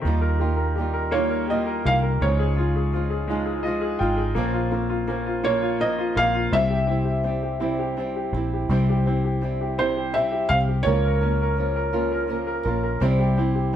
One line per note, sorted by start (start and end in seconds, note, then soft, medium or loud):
0.01 1.81 D#2 loud
0.01 2.16 D#3 medium
0.01 0.41 D#3 medium
0.06 0.42 G3 medium
0.06 0.42 A#3 medium
0.06 0.42 D#4 loud
0.06 0.40 F4 medium
0.21 0.55 A#4 medium
0.39 0.78 D#4 medium
0.39 0.77 F4 medium
0.39 0.74 G4 medium
0.44 0.77 A#3 soft
0.57 0.92 A#4 soft
0.75 1.13 G3 medium
0.75 1.14 A#3 medium
0.75 1.46 G4 medium
0.79 1.13 D#4 medium
0.79 1.13 F4 medium
0.93 1.28 A#4 medium
1.11 2.17 A#3 medium
1.11 1.49 A#3 medium
1.11 1.50 D#4 medium
1.11 1.50 F4 medium
1.11 1.46 C#5 medium
1.16 1.51 D#3 medium
1.16 1.48 G3 medium
1.30 1.65 A#4 medium
1.47 1.85 G3 medium
1.47 1.86 A#3 medium
1.47 1.86 D#4 medium
1.47 1.83 G4 medium
1.47 1.83 D#5 medium
1.52 1.84 F4 medium
1.66 2.01 A#4 medium
1.84 2.19 C2 medium
1.84 2.22 D#4 medium
1.84 2.21 F4 medium
1.84 2.20 G4 soft
1.84 1.94 F5 medium
1.89 2.22 A#3 soft
2.03 2.21 A#4 medium
2.21 3.97 C#2 medium
2.21 4.32 C#3 medium
2.21 2.57 C#3 medium
2.21 2.58 F3 medium
2.21 2.58 G#3 medium
2.21 2.58 D#4 medium
2.21 2.57 F4 medium
2.21 3.97 C#5 medium
2.39 2.74 G#4 medium
2.56 2.94 D#4 soft
2.56 2.92 F4 medium
2.56 2.94 F4 medium
2.61 2.93 G#3 soft
2.76 3.08 G#4 medium
2.92 3.29 F3 medium
2.92 3.29 G#3 soft
2.92 3.29 D#4 medium
2.92 3.61 F4 medium
2.92 3.28 F4 medium
3.10 3.44 G#4 medium
3.27 3.63 F3 medium
3.27 4.32 G#3 medium
3.27 3.65 G#3 medium
3.27 3.65 D#4 medium
3.27 3.65 F4 medium
3.32 3.66 C#3 medium
3.46 3.80 G#4 medium
3.63 4.00 F3 medium
3.63 4.01 G#3 medium
3.63 4.01 D#4 medium
3.63 3.98 F4 soft
3.63 3.97 D#5 medium
3.68 3.99 F4 medium
3.81 4.15 G#4 medium
3.99 4.34 G#1 medium
3.99 4.37 D#4 medium
3.99 4.35 F4 medium
3.99 4.36 F4 medium
3.99 4.33 G5 medium
4.04 4.37 G#3 medium
4.17 4.35 G#4 medium
4.35 6.12 A#1 loud
4.35 4.72 A#2 medium
4.35 4.72 F3 medium
4.35 4.70 A#3 medium
4.35 4.72 C4 loud
4.35 4.73 C#4 medium
4.35 4.70 F4 loud
4.53 4.88 F4 medium
4.71 5.06 A#3 medium
4.71 5.09 C4 medium
4.71 5.08 C#4 soft
4.71 5.08 F4 medium
4.89 5.25 F4 medium
5.07 5.44 F3 medium
5.07 5.42 A#3 medium
5.07 5.45 C4 medium
5.07 5.44 C#4 medium
5.07 5.42 F4 medium
5.26 5.61 F4 medium
5.43 5.81 A#2 medium
5.43 5.79 F3 medium
5.43 5.78 A#3 medium
5.43 5.80 C#4 medium
5.43 5.80 F4 medium
5.43 5.78 C#5 medium
5.62 5.97 F4 medium
5.80 6.16 F3 medium
5.80 6.14 A#3 medium
5.80 6.16 C4 medium
5.80 6.17 C#4 medium
5.80 6.14 F4 medium
5.80 6.18 D#5 medium
5.98 6.33 F4 medium
6.15 6.50 A#1 medium
6.15 6.51 A#3 medium
6.15 6.52 C4 medium
6.15 6.53 C#4 medium
6.15 6.52 F4 medium
6.15 6.54 F5 loud
6.34 6.52 F4 medium
6.52 8.29 C2 loud
6.52 6.88 C3 medium
6.52 6.89 G3 medium
6.52 6.85 C4 medium
6.52 6.89 C4 medium
6.52 6.88 E4 medium
6.52 6.86 G4 loud
6.52 8.30 E5 medium
6.70 7.03 G4 medium
6.87 7.23 C4 medium
6.87 7.25 E4 soft
6.87 7.24 G4 medium
6.91 7.24 C4 soft
7.05 7.41 G4 soft
7.23 7.60 G3 medium
7.23 7.59 C4 soft
7.23 7.60 C4 medium
7.23 7.60 E4 medium
7.23 7.59 G4 medium
7.43 7.77 G4 soft
7.60 7.98 C3 medium
7.60 7.96 G3 medium
7.60 7.96 C4 medium
7.60 7.97 C4 medium
7.60 7.97 E4 medium
7.60 7.97 G4 medium
7.79 8.14 G4 medium
7.97 8.33 G3 medium
7.97 8.32 C4 medium
7.97 8.34 C4 medium
7.97 8.34 E4 medium
7.97 8.32 G4 medium
8.16 8.52 G4 medium
8.33 8.67 A#1 loud
8.33 8.70 C4 soft
8.33 8.70 E4 medium
8.33 8.70 G4 medium
8.37 8.69 C4 medium
8.53 8.88 G4 soft
8.69 10.46 C2 loud
8.69 9.06 C3 medium
8.69 9.06 G3 medium
8.69 9.06 C4 medium
8.69 9.05 C4 medium
8.69 9.06 E4 medium
8.69 9.05 G4 medium
8.90 9.23 G4 medium
9.06 9.40 C4 medium
9.06 9.41 C4 soft
9.06 9.42 E4 medium
9.06 9.42 G4 medium
9.24 9.59 G4 soft
9.41 9.78 G3 medium
9.41 9.77 C4 soft
9.41 9.78 C4 medium
9.41 9.78 E4 medium
9.41 9.77 G4 medium
9.61 9.95 G4 medium
9.78 10.16 C3 medium
9.78 10.13 G3 medium
9.78 10.13 C4 medium
9.78 10.14 C4 medium
9.78 10.15 E4 medium
9.78 10.14 G4 medium
9.78 10.12 C5 medium
9.96 10.30 G4 medium
10.14 10.50 G3 medium
10.14 10.49 C4 medium
10.14 10.50 C4 medium
10.14 10.51 E4 medium
10.14 10.48 G4 medium
10.14 10.47 E5 medium
10.32 10.67 G4 medium
10.49 10.84 C2 medium
10.49 10.85 C4 medium
10.49 10.86 C4 medium
10.49 10.86 G4 medium
10.49 10.57 F5 medium
10.68 10.86 G4 medium
10.83 12.61 C#2 loud
10.83 11.21 C#3 medium
10.83 11.21 F3 medium
10.83 11.22 A#3 medium
10.83 11.21 F4 medium
10.83 12.60 C#5 medium
10.87 11.21 C#4 medium
10.87 11.20 A#4 medium
11.05 11.40 A#4 medium
11.21 11.57 A#3 soft
11.21 11.57 C#4 medium
11.21 11.58 F4 medium
11.21 11.57 A#4 medium
11.42 11.74 A#4 medium
11.57 11.93 F3 medium
11.57 11.93 A#3 medium
11.57 11.92 C#4 medium
11.57 11.92 F4 medium
11.57 11.92 A#4 medium
11.76 12.10 A#4 medium
11.93 12.30 C#3 medium
11.93 12.27 F3 medium
11.93 12.28 A#3 medium
11.93 12.27 C#4 medium
11.93 12.29 F4 medium
11.93 12.29 A#4 medium
12.12 12.45 A#4 medium
12.28 12.64 F3 medium
12.28 12.65 A#3 medium
12.28 12.64 C#4 medium
12.28 12.66 F4 medium
12.28 12.63 A#4 medium
12.47 12.82 A#4 medium
12.65 12.99 A#1 medium
12.65 13.01 A#3 medium
12.65 13.00 C#4 medium
12.65 13.02 F4 medium
12.65 13.01 A#4 medium
12.83 13.01 A#4 medium
13.00 13.76 C2 loud
13.00 13.37 C3 medium
13.00 13.37 G3 loud
13.00 13.36 C4 medium
13.00 13.37 C4 loud
13.00 13.37 E4 medium
13.00 13.36 G4 loud
13.19 13.54 G4 medium
13.37 13.72 C4 medium
13.37 13.73 C4 medium
13.37 13.74 E4 medium
13.37 13.73 G4 medium
13.55 13.76 G4 medium
13.73 13.76 G3 medium